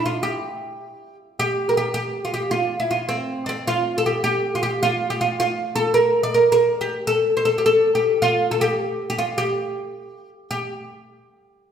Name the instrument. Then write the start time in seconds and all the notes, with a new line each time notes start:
oud
0.06 F4
0.23 G4
1.39 G4
1.69 A#4
1.77 G4
1.94 G4
2.25 F4
2.34 G4
2.51 F4
2.80 E4
2.91 F4
3.09 C4
3.46 C4 D4
3.67 F4
3.98 A4
4.06 G4
4.24 G4
4.55 F4
4.63 G4
4.83 F4
5.10 G4
5.21 F4
5.40 F4
5.76 A4
5.94 A#4
6.23 D5
6.34 A#4
6.52 A#4
6.81 G4
7.07 A4
7.37 C5
7.45 A4
7.58 G4
7.66 A4
7.95 G4
8.22 F4
8.51 A4
8.61 G4
9.10 G4
9.19 F4
9.38 G4
10.51 G4